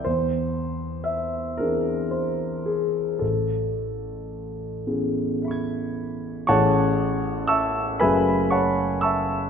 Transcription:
<<
  \new Staff \with { instrumentName = "Grand piano" } { \time 6/8 \key a \major \tempo 4. = 38 << { r2. | r2 <e'' b'' cis''' gis'''>4 | <cis'' fis'' a''>4 <e'' a'' cis'''>8 <b' e'' gis''>8 <cis'' fis'' a''>8 <e'' a'' cis'''>8 | } \\ { bis'4 e''8 bes'8 bis'8 gis'8 | a'2~ a'8 r8 | cis'''4 e'''8 b''8 cis'''8 e'''8 | } >> }
  \new Staff \with { instrumentName = "Grand piano" } { \time 6/8 \key a \major e,4. <e bis d' gis'>4. | a,,4. <e b cis' gis'>4. | <a,, e a cis' gis'>4. <fis,, fis a cis' gis'>4. | }
>>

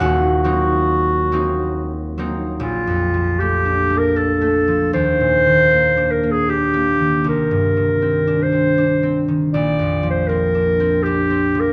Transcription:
<<
  \new Staff \with { instrumentName = "Clarinet" } { \time 3/4 \key ees \major \tempo 4 = 78 ges'2~ ges'8 r8 | f'4 g'8. bes'16 a'4 | c''4. bes'16 aes'16 g'4 | bes'4. c''4~ c''16 r16 |
d''8. c''16 bes'4 g'8. bes'16 | }
  \new Staff \with { instrumentName = "Harp" } { \time 3/4 \key ees \major <ges' c'' ges'' c'''>2. | r2. | r2. | r2. |
r2. | }
  \new Staff \with { instrumentName = "Harp" } { \time 3/4 \key ees \major <ees,, ees, c'>8 <ges bes c' ees'>4 <ges bes c' ees'>4 <ges bes c' ees'>8 | \tuplet 3/2 { bes,,8 f,8 f8 a8 d'8 a8 d'8 a8 f8 } | \tuplet 3/2 { ees,8 bes,8 ees8 bes8 d'8 bes8 d'8 bes8 ees8 } | \tuplet 3/2 { c,8 g,8 ees8 c'8 d'8 c'8 d'8 c'8 ees8 } |
\tuplet 3/2 { bes,,8 f,8 f8 c'8 d'8 c'8 d'8 c'8 f8 } | }
>>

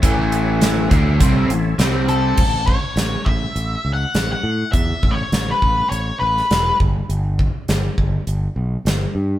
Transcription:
<<
  \new Staff \with { instrumentName = "Lead electric guitar" } { \time 4/4 \key a \mixolydian \tempo 4 = 102 r2. r8 a'8~ | a'8 cis''4 e''8~ \tuplet 3/2 { e''4 fis''8~ fis''8 fis''4 } | \tuplet 3/2 { e''4 cis''8~ cis''8 b'4 } cis''8 b'4 r8 | r1 | }
  \new Staff \with { instrumentName = "Tonewheel organ" } { \time 4/4 \key a \mixolydian <a' cis'' e''>2. <c' g' g''>4 | r1 | r1 | r1 | }
  \new Staff \with { instrumentName = "Overdriven electric guitar" } { \clef bass \time 4/4 \key a \mixolydian <a, e a>4. <d a d'>8 <c g c'>8 <a, e>8 <c g c'>4 | r1 | r1 | r1 | }
  \new Staff \with { instrumentName = "Fingered electric bass" } { \clef bass \time 4/4 \key a \mixolydian a,,4. d,8 c,8 a,,8 c,4 | a,,4 a,,8 a,,8 a,,8 cis,8 a,,8 a,8 | e,8 a,,8 a,,8 a,,8 a,,8 a,,8 e,,8 g,,8 | g,,4 g,,8 g,,8 g,,8 b,,8 g,,8 g,8 | }
  \new DrumStaff \with { instrumentName = "Drums" } \drummode { \time 4/4 <hh bd>8 hh8 <hh sn>8 <hh bd>8 <hh bd>8 hh8 <hh sn>8 hh8 | <cymc bd>8 bd8 <hh sn>8 bd8 hh4 <hh sn>4 | <hh bd>8 bd8 <hh sn>8 bd8 hh8. sn16 <hh sn>8 bd8 | hh8 bd8 <hh sn>8 bd8 hh4 <hh sn>4 | }
>>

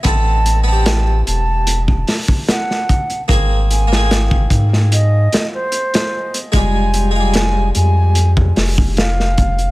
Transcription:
<<
  \new Staff \with { instrumentName = "Flute" } { \time 4/4 \key f \minor \tempo 4 = 74 a''8. a''8. a''8. r8. ges''4 | r8 aes''8. r8. ees''8. c''4 r16 | aes''8. aes''8. aes''8. r8. f''4 | }
  \new Staff \with { instrumentName = "Harpsichord" } { \time 4/4 \key f \minor <b c' a'>8. <b c' g'>2.~ <b c' g'>16 | <bes c' aes'>8. <bes c' aes'>2.~ <bes c' aes'>16 | <g aes f'>8. <g aes f'>2.~ <g aes f'>16 | }
  \new Staff \with { instrumentName = "Sub bass" } { \clef bass \time 4/4 \key f \minor a,,4. e,,4 r4. | aes,,4. aes,4 r4. | f,,4. f,4 f,,4. | }
  \new DrumStaff \with { instrumentName = "Drums" } \drummode { \time 4/4 <hh bd>8 hh8 <hh sn>8 hh8 hh16 bd16 <hho sn>16 bd16 <hh sn>16 sn16 <hh bd>16 hh16 | <hh bd>8 hh16 sn16 <hh sn>16 bd16 <hh bd>16 sn16 hh8 <hh sn>8 hh16 <hh sn>8 hh16 | <hh bd>8 hh8 <hh sn>8 hh8 hh16 bd16 <hho sn>16 bd16 <hh sn>16 sn16 <hh bd>16 hh16 | }
>>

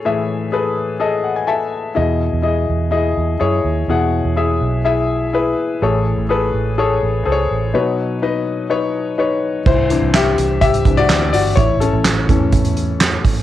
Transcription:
<<
  \new Staff \with { instrumentName = "Grand piano" } { \time 4/4 \key e \major \tempo 4 = 125 << { r2 r8 fis''16 gis''16 a''4 | r1 | r1 | r1 |
r1 | <e' c''>4 <g' e''>4 <g' e''>8. <fis' d''>8. <fis' d''>8 | <e' cis''>8 <cis' a'>2. r8 | } \\ { <gis' a' e''>4 <gis' a' b'>4 <gis' a' dis''>4 <a' e'' gis''>4 | <e' gis' dis''>4 <e' gis' dis''>4 <e' gis' dis''>4 <e' gis' cis''>4 | <e' gis' fis''>4 <e' gis' e''>4 <e' gis' e''>4 <e' gis' b'>4 | <gis' a' cis''>4 <gis' a' b'>4 <gis' a' cis''>4 <gis' a' c'' cis''>4 |
<dis' b' cis''>4 <dis' b' dis''>4 <dis' b' cis''>4 <dis' b' cis''>4 | r1 | r1 | } >> }
  \new Staff \with { instrumentName = "Grand piano" } { \clef bass \time 4/4 \key e \major <a, e>4. r2 r8 | b,4. r2 r8 | b,4. r2 r8 | <a, e>4. r2 r8 |
<b, fis>4. r2 r8 | r8 <e c' d'>8 r4. <e c' d'>8 r4 | r4. <e a cis'>2~ <e a cis'>8 | }
  \new Staff \with { instrumentName = "Fingered electric bass" } { \clef bass \time 4/4 \key e \major r1 | e,8. e,8. e,4 e,8 fis,8 dis,8 | e,8. e,8. b,,2 r8 | a,,8. a,,8. a,,4 a,,8 cis,8 a,,8 |
r1 | c,8. c,8. c,4 c,8 d,8 g,,8 | a,,8. a,,8. e,2 r8 | }
  \new DrumStaff \with { instrumentName = "Drums" } \drummode { \time 4/4 r4 r4 r4 r4 | r4 r4 r4 r4 | r4 r4 r4 r4 | r4 r4 r4 r4 |
r4 r4 r4 r4 | <cymc bd>8 hh8 <hc hh sn>8 hh8 <hh bd>16 hh16 <hh bd>8 <hc hh sn>8 hho8 | <hh bd>8 hh8 <hc hh sn>8 <hh bd>8 <hh bd>16 hh16 hh8 <hc hh sn>8 <hho bd>8 | }
>>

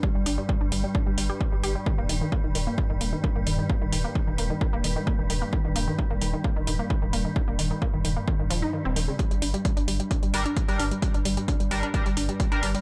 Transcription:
<<
  \new Staff \with { instrumentName = "Analog polysynth" } { \time 4/4 \key ees \lydian \tempo 4 = 131 r1 | r1 | r1 | r1 |
r1 | r2 r8 <g d' bes'>16 r8 <g d' bes'>16 r8 | r4. <g d' bes'>16 r16 <g d' bes'>16 r4 <g d' bes'>16 r8 | }
  \new Staff \with { instrumentName = "Synth arpeggio sound" } { \clef bass \time 4/4 \key ees \lydian g16 g16 d'16 g16 g16 d'16 g16 g16 d'16 g16 g16 g'16 g16 g16 g'16 g16 | ees16 bes16 ees16 ees16 bes16 ees16 ees16 bes16 ees16 ees16 bes16 ees16 ees16 bes16 ees16 ees16 | bes16 ees16 ees16 bes16 ees16 ees16 bes16 ees16 ees16 bes16 ees16 ees16 bes16 ees16 ees16 bes16 | ees16 ees16 bes16 ees16 ees16 bes16 ees16 ees16 bes16 ees16 ees16 bes16 ees16 ees16 bes16 ees16 |
ees16 bes16 ees16 ees16 bes16 ees16 ees16 bes16 ees16 ees16 f16 ees'16 ees16 c'16 ees16 cis16 | g16 g16 d'16 g16 g16 d'16 g16 g16 d'16 g16 g16 d'16 g16 g16 d'16 g16 | g16 d'16 g16 g16 d'16 g16 g16 d'16 g16 g16 d'16 g16 g16 d'16 g16 g16 | }
  \new Staff \with { instrumentName = "Synth drone" } { \clef bass \time 4/4 \key ees \lydian <g, g>1~ | <g, g>1~ | <g, g>1~ | <g, g>1~ |
<g, g>1 | <g, g>1~ | <g, g>1 | }
  \new Staff \with { instrumentName = "Sub bass" } { \clef bass \time 4/4 \key ees \lydian r16 g,,16 g,,16 r8 g,,16 g,,16 r8 g,,16 g,,16 r8 g,,16 g,,16 r16 | r16 ees,,16 ees,,16 r8 ees,,16 ees,,16 r8 ees,,16 ees,,16 r8 ees,,16 ees,,16 r16 | r16 ees,,16 ees,,16 r8 ees,,16 ees,,16 r8 ees,,16 ees,,16 r8 ees,,16 ees,,16 r16 | r16 ees,,16 ees,,16 r8 ees,,16 ees,,16 r8 ees,,16 ees,,16 r8 ees,,16 ees,,16 r16 |
r16 ees,,16 ees,,16 r8 ees,,16 ees,,16 r8 ees,,16 ees,,16 r8 ees,,16 ees,,16 r16 | r16 g,,16 g,,16 r8 g,,16 g,,16 r8 g,,16 g,,16 r8 g,,16 g,,16 r16 | r16 g,,16 g,,16 r8 g,,16 g,,16 r8 g,,16 g,,16 r8 g,,16 g,,16 r16 | }
  \new DrumStaff \with { instrumentName = "Drums" } \drummode { \time 4/4 bd8 hho8 bd8 hho8 bd8 hho8 bd8 hho8 | bd8 hho8 bd8 hho8 bd8 hho8 bd8 hho8 | bd8 hho8 bd8 hho8 bd8 hho8 bd8 hho8 | bd8 hho8 bd8 hho8 bd8 hho8 bd8 hho8 |
bd8 hho8 bd8 hho8 bd8 hho8 r8 hho8 | <hh bd>16 hh16 hho16 hh16 <hh bd>16 hh16 hho16 hh16 <hh bd>16 hh16 hho16 hh16 <hh bd>16 hh16 hho16 hh16 | <hh bd>16 hh16 hho16 hh16 <hh bd>16 hh16 hho16 hh16 <hh bd>16 hh16 hho16 hh16 <hh bd>16 hh16 hho16 hh16 | }
>>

